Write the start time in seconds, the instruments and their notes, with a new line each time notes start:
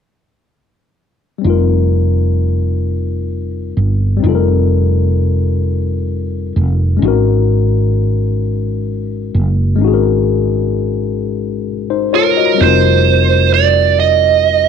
1.38 tine electric piano G3 C4
1.44 fretless electric bass F1, tine electric piano D#4 F4
1.50 tine electric piano A#4
3.77 fretless electric bass G1
4.17 tine electric piano G3 C4
4.23 fretless electric bass F1, tine electric piano D#4 F4
4.29 tine electric piano A4
4.35 tine electric piano A#4
6.56 fretless electric bass F1
6.97 tine electric piano G#3 C#4
7.02 fretless electric bass G#1, tine electric piano D#4 F#4
7.08 tine electric piano A#4
9.34 fretless electric bass F#1
9.76 tine electric piano G#3 C#4
9.81 fretless electric bass G#1, tine electric piano D#4 F#4
9.88 tine electric piano G#4
9.94 tine electric piano A#4
11.90 tine electric piano D#4 C5
12.13 fretless electric bass F#1, tine electric piano F4 C#5, lead electric guitar A#4
12.37 tine electric piano F#4 D#5
12.54 tine electric piano G3 C4
12.60 fretless electric bass F1, tine electric piano D#4 F4, lead electric guitar C5
12.66 tine electric piano A#4
13.54 lead electric guitar D5
14.00 lead electric guitar D#5